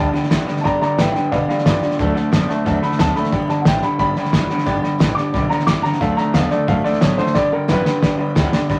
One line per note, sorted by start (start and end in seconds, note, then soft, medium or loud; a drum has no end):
0.00 0.14 D2 medium
0.00 0.12 G2 medium
0.00 0.12 D3 medium
0.00 0.14 G3 medium
0.00 0.13 B3 medium
0.00 0.13 D4 medium
0.00 0.12 G4 medium
0.00 0.29 B5 medium
0.13 0.29 G2 medium
0.13 0.29 D3 loud
0.13 0.30 G3 soft
0.13 0.30 B3 medium
0.13 0.30 D4 medium
0.13 0.30 G4 medium
0.13 0.25 D5 medium
0.13 0.25 G5 medium
0.13 0.25 B5 loud
0.13 snare soft
0.23 snare soft
0.30 0.47 E2 loud
0.30 0.45 G2 medium
0.30 0.47 G2 medium
0.30 0.48 D3 loud
0.30 0.46 E3 loud
0.30 0.47 G3 loud
0.30 0.47 B3 loud
0.30 0.47 D4 loud
0.30 0.46 G4 loud
0.30 0.42 D5 medium
0.30 0.42 G5 medium
0.30 0.42 B5 loud
0.30 kick medium
0.30 snare loud
0.30 hi-hat pedal medium
0.46 0.62 G2 medium
0.46 0.63 D3 medium
0.46 0.63 G3 medium
0.46 0.63 B3 medium
0.46 0.63 D4 medium
0.46 0.64 G4 medium
0.46 0.58 D5 medium
0.46 0.58 G5 medium
0.46 0.59 B5 loud
0.46 muted upright bass stroke soft
0.46 snare soft
0.57 0.63 A5 medium
0.57 snare soft
0.64 0.81 G2 medium
0.64 0.80 G2 medium
0.64 0.81 G2 medium
0.64 0.81 D3 medium
0.64 0.80 D3 medium
0.64 0.81 G3 medium
0.64 0.81 B3 medium
0.64 0.80 D4 medium
0.64 0.79 G4 medium
0.64 0.80 D5 medium
0.64 0.75 D5 loud
0.64 0.75 G5 medium
0.64 0.80 A#5 loud
0.64 0.76 B5 loud
0.64 kick loud
0.64 snare soft
0.80 0.97 G2 medium
0.80 0.97 D3 medium
0.80 0.97 G3 soft
0.80 0.97 B3 soft
0.80 0.97 D4 medium
0.80 0.98 G4 medium
0.80 0.97 D5 medium
0.80 0.92 D5 medium
0.80 0.92 G5 medium
0.80 0.98 A#5 medium
0.80 0.92 B5 medium
0.80 muted upright bass stroke soft
0.80 snare soft
0.97 1.15 G2 medium
0.97 1.13 G2 medium
0.97 1.14 A2 medium
0.97 1.15 D3 medium
0.97 1.14 E3 loud
0.97 1.15 G3 medium
0.97 1.15 B3 medium
0.97 1.14 D4 medium
0.97 1.14 G4 medium
0.97 1.11 B4 medium
0.97 1.09 D5 medium
0.97 1.12 G5 medium
0.97 1.09 G5 medium
0.97 1.09 B5 medium
0.97 kick medium
0.97 snare loud
0.97 hi-hat pedal medium
1.12 1.30 G2 medium
1.12 1.30 D3 medium
1.12 1.32 D4 medium
1.12 1.32 G4 medium
1.12 1.29 B4 medium
1.12 1.26 D5 medium
1.12 1.30 G5 medium
1.12 1.26 G5 medium
1.12 muted upright bass stroke medium
1.12 snare soft
1.17 1.31 G3 medium
1.17 1.32 B3 medium
1.17 1.26 B5 medium
1.31 1.47 G2 medium
1.31 1.48 B2 medium
1.31 1.47 D3 loud
1.31 1.49 G3 medium
1.31 1.49 B3 medium
1.31 1.48 D4 medium
1.31 1.48 G4 medium
1.31 1.47 D5 medium
1.31 1.42 D5 loud
1.31 1.48 F5 medium
1.31 1.43 G5 medium
1.31 1.43 B5 loud
1.31 kick loud
1.31 snare soft
1.48 1.64 G2 medium
1.48 1.64 D3 medium
1.48 1.66 G3 soft
1.48 1.66 B3 medium
1.48 1.66 D4 medium
1.48 1.66 G4 medium
1.48 1.64 D5 medium
1.48 1.59 D5 medium
1.48 1.65 F5 medium
1.48 1.60 G5 medium
1.48 1.60 B5 medium
1.48 muted upright bass stroke medium
1.48 snare soft
1.58 snare soft
1.65 1.80 G2 medium
1.65 1.82 G2 loud
1.65 1.83 G2 medium
1.65 1.83 D3 medium
1.65 1.81 E3 loud
1.65 1.83 G3 medium
1.65 1.83 B3 medium
1.65 1.82 D4 medium
1.65 1.97 F4 medium
1.65 1.81 G4 loud
1.65 2.63 D5 loud
1.65 1.76 D5 medium
1.65 1.76 G5 medium
1.65 1.77 B5 medium
1.65 kick medium
1.65 snare loud
1.65 hi-hat pedal medium
1.82 1.97 G2 medium
1.82 1.98 D3 medium
1.82 1.99 G3 soft
1.82 2.00 B3 medium
1.82 1.99 D4 soft
1.82 1.99 G4 medium
1.82 1.93 D5 medium
1.82 1.93 G5 medium
1.82 1.93 B5 medium
1.82 muted upright bass stroke medium
1.82 snare soft
1.91 snare soft
1.99 2.16 D2 medium
1.99 2.13 D3 medium
1.99 2.16 D3 medium
1.99 2.16 F#3 medium
1.99 2.14 A3 medium
1.99 2.16 C4 medium
1.99 2.15 D4 medium
1.99 2.14 A4 medium
1.99 2.10 D5 loud
1.99 2.10 F#5 medium
1.99 2.10 A5 loud
1.99 kick loud
1.99 snare soft
2.15 2.30 D3 medium
2.15 2.31 A3 medium
2.15 2.31 C4 soft
2.15 2.31 D4 medium
2.15 2.32 A4 medium
2.15 2.26 D5 medium
2.15 2.26 F#5 medium
2.15 2.26 A5 medium
2.15 muted upright bass stroke medium
2.15 snare soft
2.32 2.49 F#2 loud
2.32 2.49 D3 medium
2.32 2.47 D3 medium
2.32 2.49 F#3 medium
2.32 2.48 B3 loud
2.32 2.49 C4 medium
2.32 2.49 D4 medium
2.32 2.47 A4 loud
2.32 2.43 D5 medium
2.32 2.43 F#5 medium
2.32 2.43 A5 loud
2.32 kick medium
2.32 snare loud
2.32 hi-hat pedal medium
2.48 2.64 D3 medium
2.48 2.64 A3 medium
2.48 2.65 C4 medium
2.48 2.66 D4 medium
2.48 2.66 A4 medium
2.48 2.59 D5 medium
2.48 2.59 F#5 medium
2.48 2.60 A5 loud
2.48 snare soft
2.65 2.82 E2 medium
2.65 2.81 D3 medium
2.65 2.83 F#3 medium
2.65 2.81 A3 medium
2.65 2.83 C4 medium
2.65 2.82 D4 medium
2.65 2.81 A4 medium
2.65 2.76 D5 loud
2.65 2.76 F#5 loud
2.65 2.77 A5 loud
2.65 kick loud
2.65 snare soft
2.82 2.98 D3 medium
2.82 2.98 A3 medium
2.82 2.99 D4 medium
2.82 2.99 A4 medium
2.82 2.93 D5 medium
2.82 2.94 F#5 medium
2.82 2.94 A5 medium
2.82 2.99 B5 medium
2.82 muted upright bass stroke medium
2.82 snare soft
2.92 snare soft
2.99 3.16 D2 loud
2.99 3.14 D3 medium
2.99 3.16 D3 medium
2.99 3.16 F#3 medium
2.99 3.15 B3 medium
2.99 3.17 C4 medium
2.99 3.15 D4 loud
2.99 3.14 A4 medium
2.99 3.10 D5 medium
2.99 3.10 F#5 medium
2.99 3.16 A5 loud
2.99 3.10 A5 medium
2.99 kick medium
2.99 snare loud
2.99 hi-hat pedal medium
3.15 3.31 D3 medium
3.15 3.32 A3 loud
3.15 3.33 C4 soft
3.15 3.32 D4 medium
3.15 3.33 A4 medium
3.15 3.27 D5 medium
3.15 3.27 F#5 medium
3.15 3.27 A5 medium
3.15 3.49 B5 medium
3.15 muted upright bass stroke medium
3.15 snare soft
3.24 snare soft
3.32 3.50 G2 medium
3.32 3.48 G2 medium
3.32 3.50 D3 medium
3.32 3.48 D3 medium
3.32 3.50 G3 medium
3.32 3.49 B3 medium
3.32 3.48 D4 medium
3.32 3.48 G4 medium
3.32 3.43 D5 loud
3.32 3.43 G5 medium
3.32 3.43 B5 loud
3.32 kick loud
3.32 snare soft
3.49 3.65 G2 medium
3.49 3.65 D3 medium
3.49 3.65 G3 soft
3.49 3.66 B3 soft
3.49 3.66 D4 medium
3.49 3.66 G4 medium
3.49 3.60 D5 medium
3.49 3.60 G5 medium
3.49 3.66 A5 medium
3.49 3.60 B5 medium
3.49 muted upright bass stroke soft
3.49 snare soft
3.61 3.64 F#5 medium
3.65 3.83 A1 loud
3.65 3.82 G2 medium
3.65 3.83 G2 medium
3.65 3.84 D3 medium
3.65 3.82 E3 loud
3.65 3.83 G3 medium
3.65 3.83 B3 medium
3.65 3.82 D4 medium
3.65 3.82 G4 loud
3.65 3.77 D5 medium
3.65 3.83 G5 loud
3.65 3.77 G5 medium
3.65 3.77 B5 medium
3.65 kick medium
3.65 snare loud
3.65 hi-hat pedal medium
3.82 3.99 G2 medium
3.82 3.99 D3 medium
3.82 3.98 G3 soft
3.82 3.99 B3 medium
3.82 4.00 D4 medium
3.82 4.00 G4 medium
3.82 3.94 D5 medium
3.82 3.94 G5 medium
3.82 3.98 B5 loud
3.82 3.94 B5 medium
3.82 muted upright bass stroke medium
3.82 snare soft
3.99 4.16 G1 medium
3.99 4.15 G2 medium
3.99 4.16 D3 medium
3.99 4.16 G3 medium
3.99 4.15 B3 medium
3.99 4.15 D4 medium
3.99 4.14 G4 medium
3.99 4.10 D5 loud
3.99 4.10 G5 medium
3.99 4.97 B5 loud
3.99 4.11 B5 loud
3.99 kick loud
3.99 snare soft
4.15 4.32 G2 medium
4.15 4.33 D3 medium
4.15 4.32 G3 soft
4.15 4.32 B3 soft
4.15 4.32 D4 medium
4.15 4.33 G4 medium
4.15 4.27 D5 medium
4.15 4.27 G5 medium
4.15 4.27 B5 medium
4.15 snare soft
4.25 snare soft
4.33 4.49 F#1 loud
4.33 4.50 G2 medium
4.33 4.49 G2 medium
4.33 4.50 D3 medium
4.33 4.49 E3 loud
4.33 4.49 G3 medium
4.33 4.49 B3 medium
4.33 4.48 D4 loud
4.33 4.47 G4 loud
4.33 4.44 D5 medium
4.33 4.44 G5 medium
4.33 4.44 B5 medium
4.33 kick medium
4.33 snare loud
4.33 hi-hat pedal medium
4.48 4.66 G2 medium
4.48 4.66 D3 loud
4.48 4.65 G3 soft
4.48 4.64 B3 medium
4.48 4.65 D4 medium
4.48 4.65 G4 medium
4.48 4.60 D5 medium
4.48 4.61 G5 medium
4.48 4.61 B5 medium
4.48 muted upright bass stroke medium
4.48 snare soft
4.58 snare soft
4.65 4.82 G1 medium
4.65 4.83 G2 medium
4.65 4.82 G2 medium
4.65 4.83 D3 medium
4.65 4.82 G3 loud
4.65 4.82 B3 loud
4.65 4.81 D4 loud
4.65 4.81 G4 loud
4.65 4.77 D5 loud
4.65 4.77 G5 loud
4.65 4.77 B5 loud
4.65 kick loud
4.65 snare soft
4.82 4.99 G2 medium
4.82 4.99 D3 medium
4.82 4.98 G3 medium
4.82 4.98 B3 medium
4.82 4.99 D4 medium
4.82 4.99 G4 medium
4.82 4.93 D5 medium
4.82 4.94 G5 medium
4.82 4.94 B5 loud
4.82 muted upright bass stroke medium
4.82 snare soft
4.98 5.17 A1 loud
4.98 5.16 G2 loud
4.98 5.16 G2 medium
4.98 5.17 D3 loud
4.98 5.16 E3 loud
4.98 5.17 G3 loud
4.98 5.16 B3 loud
4.98 5.15 D4 loud
4.98 5.15 G4 loud
4.98 5.11 D5 medium
4.98 5.11 G5 medium
4.98 5.11 B5 loud
4.98 kick medium
4.98 snare loud
4.98 hi-hat pedal medium
5.15 5.32 G2 medium
5.15 5.33 D3 medium
5.15 5.32 G3 medium
5.15 5.33 B3 medium
5.15 5.34 D4 medium
5.15 5.33 G4 medium
5.15 5.27 D5 medium
5.15 5.28 G5 medium
5.15 5.28 B5 medium
5.15 5.49 D6 loud
5.15 muted upright bass stroke medium
5.15 snare soft
5.33 5.50 B1 medium
5.33 5.48 G2 medium
5.33 5.49 D3 loud
5.33 5.51 G3 medium
5.33 5.50 B3 medium
5.33 5.49 D4 medium
5.33 5.48 G4 medium
5.33 5.44 D5 loud
5.33 5.44 G5 medium
5.33 5.45 B5 loud
5.33 kick loud
5.33 snare soft
5.49 5.65 G2 medium
5.49 5.66 D3 medium
5.49 5.66 G3 soft
5.49 5.67 B3 medium
5.49 5.67 D4 medium
5.49 5.67 G4 medium
5.49 5.61 D5 medium
5.49 5.61 G5 medium
5.49 5.66 A#5 medium
5.49 5.61 B5 medium
5.49 snare soft
5.60 snare soft
5.67 5.83 C2 loud
5.67 5.82 G2 medium
5.67 5.84 G2 medium
5.67 5.84 D3 loud
5.67 5.83 E3 loud
5.67 5.84 G3 medium
5.67 5.83 B3 loud
5.67 5.83 D4 loud
5.67 5.82 G4 loud
5.67 5.78 D5 medium
5.67 5.78 G5 medium
5.67 5.78 B5 medium
5.67 5.84 D6 loud
5.67 kick medium
5.67 snare loud
5.67 hi-hat pedal medium
5.82 5.99 G2 medium
5.82 5.99 D3 loud
5.82 6.01 G3 soft
5.82 6.01 B3 medium
5.82 6.01 D4 medium
5.82 6.01 G4 medium
5.82 5.94 D5 medium
5.82 5.95 G5 medium
5.82 6.00 A#5 loud
5.82 5.95 B5 medium
5.82 muted upright bass stroke soft
5.82 snare soft
5.93 snare soft
6.00 6.17 D2 loud
6.00 6.16 D3 medium
6.00 6.18 D3 medium
6.00 6.18 F#3 medium
6.00 6.16 A3 medium
6.00 6.17 C4 medium
6.00 6.17 D4 medium
6.00 6.16 A4 medium
6.00 6.11 D5 loud
6.00 6.17 F5 medium
6.00 6.11 F#5 medium
6.00 6.12 A5 loud
6.00 kick loud
6.00 snare soft
6.17 6.32 D3 medium
6.17 6.33 A3 medium
6.17 6.33 C4 soft
6.17 6.34 D4 medium
6.17 6.34 A4 medium
6.17 6.28 D5 medium
6.17 6.28 F#5 medium
6.17 6.29 A5 medium
6.17 6.34 A#5 loud
6.17 muted upright bass stroke soft
6.17 snare soft
6.33 6.50 E2 loud
6.33 6.49 D3 medium
6.33 6.51 D3 medium
6.33 6.51 F#3 medium
6.33 6.50 B3 loud
6.33 6.51 C4 loud
6.33 6.50 D4 medium
6.33 6.49 A4 medium
6.33 6.45 D5 medium
6.33 6.51 F5 medium
6.33 6.45 F#5 medium
6.33 6.46 A5 medium
6.33 kick medium
6.33 snare loud
6.33 hi-hat pedal medium
6.50 6.66 D3 medium
6.50 6.67 A3 medium
6.50 6.67 C4 medium
6.50 6.67 D4 medium
6.50 6.68 A4 medium
6.50 6.61 D5 medium
6.50 6.68 D5 medium
6.50 6.61 F#5 medium
6.50 6.62 A5 medium
6.50 snare soft
6.67 6.84 F#2 loud
6.67 6.83 D3 medium
6.67 6.85 F#3 medium
6.67 6.83 A3 loud
6.67 6.85 C4 medium
6.67 6.84 D4 medium
6.67 6.83 A4 medium
6.67 6.78 D5 loud
6.67 6.85 F5 loud
6.67 6.78 F#5 medium
6.67 6.79 A5 loud
6.67 kick loud
6.67 snare soft
6.84 7.00 D3 medium
6.84 7.00 A3 medium
6.84 7.00 C4 soft
6.84 7.00 D4 medium
6.84 7.01 A4 medium
6.84 7.01 D5 medium
6.84 6.95 D5 medium
6.84 6.95 F#5 medium
6.84 6.96 A5 medium
6.84 muted upright bass stroke medium
6.84 snare soft
6.93 snare soft
7.00 7.18 A2 loud
7.00 7.18 D3 medium
7.00 7.16 D3 medium
7.00 7.18 F#3 medium
7.00 7.17 B3 medium
7.00 7.18 C4 medium
7.00 7.17 D4 loud
7.00 7.16 A4 loud
7.00 7.18 C#5 medium
7.00 7.12 D5 medium
7.00 7.12 F#5 medium
7.00 7.12 A5 medium
7.00 kick medium
7.00 snare loud
7.00 hi-hat pedal medium
7.17 7.34 D3 medium
7.17 7.34 A3 loud
7.17 7.34 C4 soft
7.17 7.34 D4 medium
7.17 7.35 A4 medium
7.17 7.35 C5 loud
7.17 7.29 D5 medium
7.17 7.29 F#5 medium
7.17 7.29 A5 medium
7.17 muted upright bass stroke medium
7.17 snare soft
7.26 snare soft
7.34 7.51 G2 medium
7.34 7.50 G2 medium
7.34 7.51 G2 loud
7.34 7.52 D3 medium
7.34 7.50 D3 medium
7.34 7.51 G3 medium
7.34 7.51 B3 medium
7.34 7.51 D4 medium
7.34 7.49 G4 medium
7.34 7.51 D5 loud
7.34 7.46 D5 loud
7.34 7.46 G5 loud
7.34 7.46 B5 loud
7.34 kick loud
7.34 snare medium
7.51 7.67 G2 medium
7.51 7.68 D3 medium
7.51 7.67 G3 soft
7.51 7.67 B3 medium
7.51 7.67 D4 medium
7.51 7.68 G4 medium
7.51 7.69 A#4 loud
7.51 7.62 D5 medium
7.51 7.63 G5 medium
7.51 7.63 B5 medium
7.51 muted upright bass stroke soft
7.68 7.85 F#2 loud
7.68 7.85 G2 medium
7.68 7.84 G2 loud
7.68 7.85 D3 medium
7.68 7.84 E3 loud
7.68 7.84 G3 loud
7.68 7.84 B3 medium
7.68 7.83 D4 medium
7.68 7.82 G4 medium
7.68 8.63 B4 loud
7.68 7.80 D5 medium
7.68 7.80 G5 medium
7.68 7.80 B5 medium
7.68 kick medium
7.68 snare medium
7.68 hi-hat pedal medium
7.83 8.01 G2 medium
7.83 8.01 D3 medium
7.83 8.00 G3 medium
7.83 8.00 B3 medium
7.83 8.01 D4 medium
7.83 8.01 G4 medium
7.83 7.96 D5 medium
7.83 7.96 G5 medium
7.83 muted upright bass stroke medium
7.83 snare medium
7.88 7.97 B5 medium
8.01 8.17 G2 medium
8.01 8.18 D3 medium
8.01 8.19 G3 medium
8.01 8.18 B3 medium
8.01 8.18 D4 medium
8.01 8.17 G4 medium
8.01 8.13 D5 loud
8.01 8.13 G5 medium
8.01 8.13 B5 loud
8.01 kick loud
8.01 snare medium
8.18 8.34 G2 medium
8.18 8.34 D3 medium
8.18 8.35 G3 medium
8.18 8.35 B3 medium
8.18 8.35 D4 medium
8.18 8.35 G4 medium
8.18 8.29 D5 loud
8.18 8.30 G5 medium
8.18 8.30 B5 loud
8.18 muted upright bass stroke soft
8.35 8.52 D2 loud
8.35 8.51 G2 medium
8.35 8.52 G2 loud
8.35 8.52 D3 loud
8.35 8.51 E3 loud
8.35 8.53 G3 loud
8.35 8.52 B3 loud
8.35 8.51 D4 loud
8.35 8.51 G4 loud
8.35 8.46 D5 medium
8.35 8.46 G5 medium
8.35 8.47 B5 medium
8.35 kick medium
8.35 snare loud
8.35 hi-hat pedal medium
8.52 8.68 G2 medium
8.52 8.68 D3 medium
8.52 8.68 G3 medium
8.52 8.69 B3 medium
8.52 8.69 D4 medium
8.52 8.69 G4 medium
8.52 8.63 D5 medium
8.52 8.63 G5 medium
8.52 8.63 B5 loud
8.52 snare loud
8.69 8.79 G2 medium
8.69 8.79 D3 medium
8.69 8.79 G3 medium
8.69 8.79 B3 medium
8.69 8.79 D4 medium
8.69 8.79 G4 medium
8.69 8.79 D5 loud
8.69 8.79 G5 loud
8.69 8.79 B5 loud
8.69 kick loud
8.69 snare soft